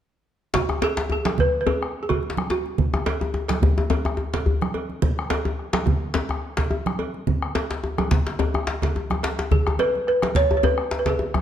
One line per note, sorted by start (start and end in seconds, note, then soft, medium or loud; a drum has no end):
0.54 0.83 F#4 medium
0.54 bombo low medium
0.54 djembe slap loud
0.54 djembe slap soft
0.54 djembe bass medium
0.54 low conga medium
0.69 bombo rim medium
0.69 djembe tone medium
0.69 high conga soft
0.82 1.11 G#4 medium
0.82 cowbell medium
0.82 djembe slap medium
0.82 djembe tone medium
0.82 high conga soft
0.97 djembe slap medium
0.97 djembe slap soft
0.97 high conga soft
1.10 1.40 G#4 medium
1.10 bombo rim soft
1.10 djembe tone medium
1.25 bombo rim medium
1.25 cowbell soft
1.25 djembe slap medium
1.25 djembe slap soft
1.25 high conga medium
1.25 djembe tone soft
1.38 1.59 B4 medium
1.38 bombo low medium
1.38 low conga medium
1.54 djembe slap soft
1.61 1.67 B4 medium
1.66 2.02 G#4 medium
1.66 cowbell soft
1.66 djembe slap medium
1.66 djembe tone medium
1.66 djembe bass medium
1.83 bombo rim medium
2.03 2.10 G#4 medium
2.09 2.50 F#4 medium
2.09 bombo low medium
2.09 cowbell soft
2.09 djembe tone soft
2.09 low conga medium
2.23 high conga soft
2.30 djembe slap medium
2.37 bombo rim medium
2.37 djembe slap soft
2.37 high conga medium
2.50 4.71 F#4 medium
2.50 djembe slap medium
2.50 djembe tone medium
2.66 high conga soft
2.78 bombo low medium
2.78 djembe slap soft
2.78 djembe bass medium
2.78 low conga medium
2.94 bombo rim medium
2.94 djembe tone medium
2.94 high conga soft
3.06 cowbell medium
3.06 djembe slap medium
3.06 djembe tone medium
3.06 high conga soft
3.21 djembe slap soft
3.21 djembe tone medium
3.21 high conga soft
3.34 bombo rim soft
3.34 djembe tone medium
3.48 bombo rim medium
3.48 cowbell soft
3.48 djembe slap medium
3.48 djembe slap soft
3.48 djembe tone soft
3.48 high conga medium
3.62 bombo low medium
3.62 low conga medium
3.62 djembe bass medium
3.78 djembe tone medium
3.90 cowbell soft
3.90 djembe slap medium
3.90 djembe tone medium
3.90 djembe bass medium
4.05 bombo rim medium
4.05 djembe tone medium
4.17 djembe tone medium
4.33 bombo low medium
4.33 cowbell soft
4.33 djembe slap medium
4.33 djembe tone soft
4.33 low conga medium
4.46 high conga soft
4.46 djembe bass medium
4.61 bombo rim medium
4.61 djembe slap soft
4.61 high conga medium
4.74 cowbell soft
4.74 djembe tone medium
4.89 high conga soft
5.02 bombo low medium
5.02 djembe slap soft
5.02 low conga medium
5.02 djembe bass medium
5.18 bombo rim medium
5.18 high conga soft
5.30 cowbell medium
5.30 djembe slap medium
5.30 high conga soft
5.30 djembe tone medium
5.45 djembe slap soft
5.45 high conga soft
5.45 djembe tone medium
5.59 bombo rim soft
5.73 bombo rim medium
5.73 cowbell soft
5.73 djembe slap loud
5.73 djembe slap soft
5.73 high conga medium
5.73 djembe tone medium
5.86 bombo low medium
5.86 djembe tone medium
5.86 low conga medium
6.02 djembe slap soft
6.14 cowbell soft
6.14 djembe slap medium
6.14 djembe tone medium
6.14 djembe bass medium
6.29 bombo rim medium
6.29 djembe tone medium
6.57 bombo low medium
6.57 cowbell soft
6.57 djembe slap medium
6.57 djembe tone soft
6.57 low conga soft
6.70 high conga soft
6.70 djembe tone medium
6.86 bombo rim medium
6.86 djembe slap soft
6.86 high conga medium
6.99 cowbell soft
6.99 djembe tone medium
7.14 high conga soft
7.27 bombo low medium
7.27 high conga soft
7.27 djembe bass medium
7.27 low conga medium
7.42 bombo rim medium
7.55 cowbell soft
7.55 djembe slap medium
7.55 djembe tone medium
7.71 bombo rim soft
7.71 djembe slap medium
7.84 bombo rim soft
7.84 djembe tone medium
7.98 bombo rim medium
7.98 cowbell soft
7.98 djembe slap soft
7.98 djembe tone soft
7.98 high conga medium
7.98 djembe tone medium
8.11 bombo low medium
8.11 djembe slap loud
8.11 low conga medium
8.27 djembe slap medium
8.27 djembe slap soft
8.39 cowbell soft
8.39 djembe slap medium
8.39 djembe tone medium
8.39 high conga soft
8.39 djembe bass medium
8.54 bombo rim medium
8.54 djembe tone medium
8.54 high conga soft
8.67 bombo rim soft
8.67 djembe slap medium
8.82 bombo low medium
8.82 cowbell soft
8.82 djembe slap medium
8.82 djembe tone soft
8.82 low conga soft
8.95 high conga soft
8.95 djembe tone medium
9.10 bombo rim medium
9.10 djembe slap soft
9.10 high conga soft
9.10 djembe tone medium
9.23 cowbell soft
9.23 djembe slap medium
9.23 djembe tone medium
9.38 djembe slap medium
9.38 high conga soft
9.51 9.80 G#4 medium
9.51 bombo low medium
9.51 djembe slap soft
9.51 djembe tone medium
9.51 djembe bass medium
9.51 low conga medium
9.67 bombo rim medium
9.67 high conga soft
9.67 djembe tone medium
9.79 9.92 B4 medium
9.79 cowbell medium
9.79 djembe slap medium
9.79 djembe tone medium
9.79 high conga soft
9.94 djembe slap soft
9.94 high conga soft
10.07 10.37 B4 medium
10.07 bombo rim soft
10.22 bombo rim medium
10.22 cowbell soft
10.22 djembe slap soft
10.22 djembe slap medium
10.22 high conga medium
10.22 djembe tone soft
10.35 10.46 C#5 medium
10.35 bombo low medium
10.35 djembe slap medium
10.35 low conga medium
10.50 djembe slap soft
10.50 djembe tone medium
10.57 10.63 C#5 medium
10.63 10.98 B4 medium
10.63 cowbell soft
10.63 djembe slap medium
10.63 djembe tone medium
10.63 djembe bass medium
10.78 bombo rim medium
10.91 djembe slap medium
10.99 11.07 B4 medium
11.06 11.42 G#4 medium
11.06 bombo low medium
11.06 cowbell soft
11.06 djembe slap medium
11.06 djembe tone medium
11.06 low conga soft
11.19 djembe tone medium
11.19 high conga soft
11.34 bombo rim medium
11.34 djembe slap medium
11.34 djembe tone medium
11.34 high conga soft